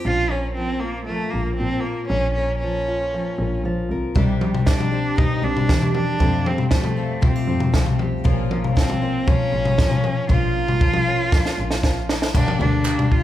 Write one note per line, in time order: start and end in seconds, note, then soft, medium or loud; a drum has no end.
0.05 1.05 A#1 medium
0.05 2.08 A#2 medium
0.05 0.56 F3 medium
0.05 2.08 C#4 medium
0.05 0.32 F4 loud
0.31 0.54 C#4 medium
0.31 1.09 A#4 medium
0.55 1.07 F3 medium
0.55 0.81 C4 medium
0.80 1.05 A#3 medium
0.80 1.59 F4 soft
1.05 1.59 F3 medium
1.05 1.32 A3 medium
1.10 1.84 A#4 medium
1.30 1.54 A#1 medium
1.30 1.55 A#3 medium
1.56 2.62 F3 medium
1.56 1.82 C4 medium
1.60 2.10 A#2 medium
1.60 2.08 F4 medium
1.80 2.07 A#3 medium
1.85 2.08 A#4 medium
2.08 3.10 A#1 medium
2.08 4.13 A#2 medium
2.08 2.33 C#4 medium
2.34 2.58 C#4 medium
2.34 3.13 A#4 soft
2.59 3.59 C#4 medium
2.64 3.13 F3 medium
2.88 3.64 F4 soft
3.14 3.64 F3 medium
3.14 3.90 A#4 medium
3.39 3.59 A#1 medium
3.64 3.87 A#1 medium
3.64 4.16 F3 medium
3.64 4.13 F4 soft
3.90 4.13 C2 medium
3.90 4.13 A#4 medium
4.15 5.16 C2 medium
4.15 4.66 C3 medium
4.15 5.18 C3 medium
4.15 4.65 D#3 medium
4.15 4.39 G3 medium
4.15 4.66 C4 medium
4.15 4.66 D4 medium
4.15 4.67 G4 medium
4.15 kick medium
4.15 floor tom medium
4.40 4.67 G3 medium
4.40 4.93 G4 soft
4.40 mid tom medium
4.55 floor tom medium
4.66 4.92 D#3 medium
4.66 5.67 G3 soft
4.66 4.92 C4 soft
4.66 5.19 D4 medium
4.66 4.91 D4 soft
4.66 4.90 G4 medium
4.66 kick medium
4.66 snare medium
4.80 floor tom medium
4.80 mid tom medium
4.91 5.16 C4 soft
4.91 5.17 D4 soft
4.91 5.17 G4 soft
4.91 5.18 G4 medium
5.16 6.17 G2 medium
5.16 5.43 D#3 soft
5.16 5.43 C4 medium
5.16 5.42 D4 medium
5.16 5.45 D#4 medium
5.16 5.68 G4 medium
5.16 5.41 G4 medium
5.16 kick medium
5.16 floor tom medium
5.42 5.63 C2 medium
5.42 5.67 C4 soft
5.42 5.68 D4 soft
5.42 5.94 D4 medium
5.42 5.69 G4 soft
5.57 floor tom medium
5.68 6.20 E2 medium
5.68 6.20 D#3 soft
5.68 6.17 G3 medium
5.68 6.19 C4 soft
5.68 6.20 D4 medium
5.68 5.94 G4 medium
5.68 6.20 G4 soft
5.68 kick medium
5.68 snare medium
5.82 floor tom medium
5.95 6.48 D4 medium
5.95 6.17 G4 medium
5.95 mid tom medium
6.19 6.71 F2 medium
6.19 8.24 F2 medium
6.19 7.20 F2 medium
6.19 6.71 C3 medium
6.19 6.69 G3 medium
6.19 6.70 A3 medium
6.19 6.71 C4 medium
6.19 6.72 F4 medium
6.19 kick medium
6.19 floor tom medium
6.46 6.71 C4 medium
6.46 7.23 G4 medium
6.46 mid tom medium
6.58 floor tom medium
6.70 7.75 F3 medium
6.70 6.97 G3 medium
6.70 6.97 A3 soft
6.70 7.25 A3 medium
6.70 6.96 C4 medium
6.70 6.95 F4 medium
6.70 kick medium
6.70 snare medium
6.84 floor tom medium
6.84 mid tom medium
6.96 7.20 G3 soft
6.96 7.21 A3 soft
6.96 7.21 C4 soft
6.96 7.74 C4 medium
6.96 7.22 F4 soft
7.21 7.74 C3 medium
7.21 7.48 G3 soft
7.21 7.48 A3 soft
7.21 7.47 C4 medium
7.21 8.00 C4 medium
7.21 7.47 F4 medium
7.21 7.36 F4 medium
7.21 kick medium
7.21 floor tom medium
7.36 8.00 G4 soft
7.48 7.68 F2 medium
7.48 7.71 G3 soft
7.48 7.72 A3 soft
7.48 7.73 C4 soft
7.48 7.73 F4 soft
7.60 floor tom medium
7.72 8.25 C2 medium
7.72 8.77 F3 medium
7.72 8.24 G3 medium
7.72 8.24 A3 medium
7.72 8.24 C4 soft
7.72 8.26 C4 medium
7.72 8.25 F4 medium
7.72 kick medium
7.72 snare medium
7.86 floor tom medium
7.99 8.23 G4 medium
7.99 mid tom medium
8.24 9.25 A#1 medium
8.24 8.76 A#2 medium
8.24 10.27 A#2 medium
8.24 8.74 F3 medium
8.24 8.49 F3 medium
8.24 8.76 A#3 medium
8.24 8.76 C#4 medium
8.24 8.76 F4 medium
8.24 kick medium
8.24 floor tom medium
8.51 8.74 F3 medium
8.51 9.03 A#4 medium
8.51 mid tom medium
8.64 floor tom medium
8.75 9.02 F3 medium
8.75 9.26 F3 medium
8.75 9.02 A#3 medium
8.75 9.28 C4 medium
8.75 9.01 C#4 medium
8.75 9.00 F4 medium
8.75 kick medium
8.75 snare medium
8.90 floor tom medium
8.90 mid tom medium
9.01 9.26 A#3 soft
9.01 9.27 C#4 soft
9.01 9.27 F4 soft
9.01 9.27 A#4 medium
9.27 9.53 F3 soft
9.27 9.77 F3 medium
9.27 9.53 A#3 soft
9.27 10.30 C#4 medium
9.27 9.52 C#4 soft
9.27 9.51 F4 medium
9.27 9.79 A#4 medium
9.27 kick medium
9.27 floor tom medium
9.52 9.73 A#1 medium
9.52 9.77 A#3 soft
9.52 9.77 C#4 soft
9.52 9.78 F4 soft
9.65 floor tom medium
9.77 10.29 A#2 medium
9.77 10.28 F3 soft
9.77 10.80 F3 medium
9.77 10.29 A#3 soft
9.77 10.29 C#4 medium
9.77 10.29 F4 medium
9.77 10.04 A#4 medium
9.77 kick loud
9.77 snare medium
9.91 floor tom medium
10.04 12.09 A#4 medium
10.04 mid tom medium
10.29 11.29 A#1 medium
10.29 10.80 A#2 medium
10.29 12.32 A#2 medium
10.29 10.79 F3 medium
10.29 10.80 A#3 medium
10.29 10.81 C#4 medium
10.29 10.81 F4 medium
10.29 12.05 F4 loud
10.29 kick medium
10.29 floor tom medium
10.56 11.06 C#4 soft
10.68 floor tom medium
10.80 11.06 F3 soft
10.80 11.30 F3 medium
10.80 11.07 A#3 medium
10.80 11.06 C#4 soft
10.80 11.04 F4 soft
10.80 kick medium
10.94 floor tom medium
10.94 mid tom medium
11.06 11.30 A#3 soft
11.06 11.31 C#4 soft
11.06 11.32 F4 medium
11.31 11.57 F3 medium
11.31 11.82 F3 medium
11.31 11.57 A#3 medium
11.31 11.83 C#4 medium
11.31 11.57 C#4 medium
11.31 11.55 F4 medium
11.31 kick loud
11.31 snare soft
11.46 snare soft
11.57 11.78 A#1 medium
11.57 11.82 A#3 soft
11.57 11.83 C#4 soft
11.57 11.83 F4 soft
11.71 snare medium
11.83 12.23 A#1 medium
11.83 12.34 F3 medium
11.83 12.33 A#3 medium
11.83 12.32 C#4 soft
11.83 12.34 C#4 medium
11.83 12.34 F4 medium
11.83 kick medium
11.83 snare medium
12.09 12.31 A#4 medium
12.09 snare medium
12.22 snare medium
12.33 12.54 G1 medium
12.33 12.59 G2 medium
12.33 12.60 D3 medium
12.33 12.60 G3 medium
12.33 12.59 A#3 medium
12.33 12.59 D4 medium
12.33 12.58 G4 medium
12.33 kick medium
12.33 floor tom medium
12.33 crash medium
12.48 mid tom medium
12.59 13.19 D2 medium
12.59 12.83 G3 soft
12.59 12.84 A#3 soft
12.59 12.85 D4 soft
12.59 13.13 D4 medium
12.59 12.85 G4 soft
12.59 floor tom medium
12.84 13.23 G3 medium
12.84 13.23 A#3 medium
12.84 13.23 D4 soft
12.84 13.23 G4 medium
12.84 clap medium
12.99 floor tom medium
13.11 13.23 F4 medium
13.11 kick medium